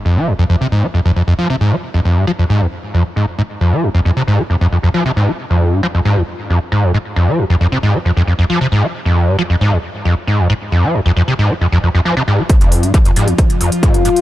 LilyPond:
<<
  \new Staff \with { instrumentName = "Synth drone" } { \time 4/4 \key f \minor \tempo 4 = 135 r1 | r1 | r1 | r1 |
r1 | r1 | r1 | <f f'>1 | }
  \new Staff \with { instrumentName = "Acid bass" } { \clef bass \time 4/4 \key f \minor f,16 f16 f,16 f,16 f,16 c16 aes,16 aes16 f,16 f,16 f,16 f,16 f16 c16 aes,16 aes16 | r16 f,16 f,16 g,16 f16 f,16 aes,16 e,16 r8 f,16 r16 aes,16 r16 aes,16 r16 | f,16 f16 f,16 f,16 f,16 c16 aes,16 aes16 f,16 f,16 f,16 f,16 f16 c16 aes,16 aes16 | r16 f,8 g,16 f16 f,16 aes,16 e,16 r8 f,16 r16 aes,16 f,16 aes,16 r16 |
f,16 f16 f,16 f,16 f,16 c16 aes,16 aes16 f,16 f,16 f,16 f,16 f16 c16 aes,16 aes16 | r16 f,8 g,16 f16 f,16 aes,16 e,16 r8 f,16 r16 aes,16 f,16 aes,16 r16 | f,16 f16 f,16 f,16 f,16 c16 aes,16 aes16 f,16 f,16 f,16 f,16 f16 c16 aes,16 aes16 | r16 f,8 g,16 f16 f,16 aes,16 e,16 r8 f,16 r16 aes,16 f,16 aes,16 r16 | }
  \new DrumStaff \with { instrumentName = "Drums" } \drummode { \time 4/4 r4 r4 r4 r4 | r4 r4 r4 r4 | r4 r4 r4 r4 | r4 r4 r4 r4 |
r4 r4 r4 r4 | r4 r4 r4 r4 | r4 r4 r4 r4 | <hh bd>16 hh16 hho16 hh16 <hh bd>16 hh16 hho16 hh16 <hh bd>16 hh16 hho16 hh16 <hh bd>16 hh16 hho16 hh16 | }
>>